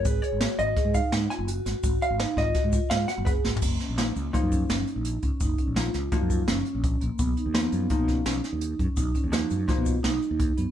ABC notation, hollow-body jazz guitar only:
X:1
M:5/4
L:1/8
Q:1/4=168
K:F#
V:1 name="Hollow-body jazz guitar"
B c2 d2 e f g z2 | z e2 d3 e f B z | z2 [E,A,D] z [E,A,D]3 z3 | z2 [E,A,D] z [E,A,D]3 z3 |
z2 [E,A,D]2 [E,A,D]3 z3 | z2 [E,A,F] z [E,A,D] z4 z |]